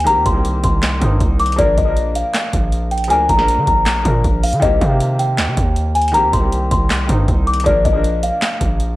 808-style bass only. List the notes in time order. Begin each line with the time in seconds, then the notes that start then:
0.07 A#1
0.16 D#2
0.26 C2
0.64 C2
1.02 G2
1.21 C2
1.58 A#1
1.77 A#1
2.53 A#1
3.10 D2
3.29 A#1
3.58 D3
3.67 A#1
4.05 A#2
4.24 A#1
4.53 D3
4.62 C2
4.81 C3
5.38 D#2
5.48 C3
5.57 D#2
6.14 A#1
6.24 D#2
6.33 C2
6.71 C2
7.09 G2
7.28 C2
7.66 A#1
7.85 A#1
8.61 A#1